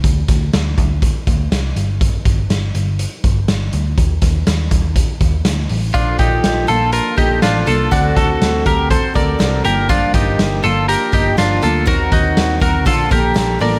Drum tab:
HH |xxxxxxxx|xxxxxxxx|xxxxxxxo|xxxxxxxx|
SD |-oo---o-|--o---o-|-oo---o-|--o---o-|
BD |oo-ooo--|oo---o--|oo-ooo--|oo---o--|

HH |xxxxxxxx|xxxxxxxx|xxxxxxxo|
SD |-oo---o-|-oo---o-|--o---o-|
BD |oo-ooo--|oo---o--|oo-ooo--|